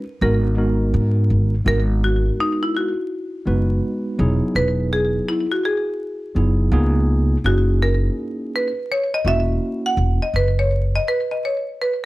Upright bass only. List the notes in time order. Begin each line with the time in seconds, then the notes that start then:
0.21 G#1
0.94 G#2
1.30 G#1
1.66 G#1
3.47 F#1
4.19 E1
4.55 E1
6.36 F#1
6.72 C#2
7.44 F#1
9.25 E1
9.97 E1
10.34 F#1